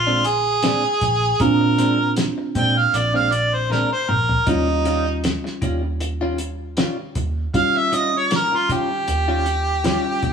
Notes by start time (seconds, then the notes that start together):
Already playing: A#1 D3 F4 G#4 C5
0.07 A#2 G#3 C4 D4
0.24 G#4, muted clean electric guitar stroke, closed hi-hat
0.63 A#2 G#3 C4 D4, snare, closed hi-hat
0.84 muted clean electric guitar stroke
1.01 A#1, muted clean electric guitar stroke, kick, closed hi-hat
1.40 A#2 C4 D4 F4 A#4, kick, closed hi-hat
1.61 muted clean electric guitar stroke
1.78 A#2 G#3 C4 D4, closed hi-hat
1.99 muted clean electric guitar stroke
2.17 snare, closed hi-hat
2.38 muted clean electric guitar stroke
2.55 A#2 G#3 C4 D4 G5, kick, closed hi-hat
2.76 F5, muted clean electric guitar stroke
2.94 A#1 D5, muted clean electric guitar stroke, closed hi-hat
3.14 A#2 G#3 C4 D4 F5
3.31 D5, muted clean electric guitar stroke, closed hi-hat
3.54 C5
3.70 A#2 G#3 C4 D4 A#4, snare
3.91 C5, muted clean electric guitar stroke
4.09 A#1 A#4, muted clean electric guitar stroke, mid tom
4.29 floor tom
4.47 D#2 D#3 G3 C#4 D#4 F4, kick, closed hi-hat
4.68 muted clean electric guitar stroke
4.85 D#3 G3 C#4 F4, closed hi-hat
5.06 muted clean electric guitar stroke
5.24 snare, closed hi-hat
5.44 muted clean electric guitar stroke, snare
5.62 D#2 D#3 G3 C#4 F4, kick, closed hi-hat
5.83 muted clean electric guitar stroke
6.00 muted clean electric guitar stroke, closed hi-hat
6.21 D#3 G3 C#4 F4
6.38 muted clean electric guitar stroke, closed hi-hat
6.77 D#3 G3 C#4 F4, snare, closed hi-hat
6.98 muted clean electric guitar stroke
7.15 D#2, muted clean electric guitar stroke, kick, closed hi-hat
7.54 D#3 G3 C#4 F4 F5, kick, closed hi-hat
7.75 E5, muted clean electric guitar stroke
7.92 D#3 G3 C#4 F4 D#5, closed hi-hat
8.13 C#5, muted clean electric guitar stroke
8.31 snare, closed hi-hat
8.36 A#4
8.52 F4, muted clean electric guitar stroke
8.69 D#3 G3 C#4 F4 G4, kick, closed hi-hat
8.91 muted clean electric guitar stroke
9.08 D#2, muted clean electric guitar stroke, closed hi-hat
9.28 D#3 G3 C#4 F4
9.46 muted clean electric guitar stroke, closed hi-hat
9.84 D#3 G3 C#4 F4, snare, closed hi-hat
10.05 muted clean electric guitar stroke
10.23 D#2, muted clean electric guitar stroke, kick, closed hi-hat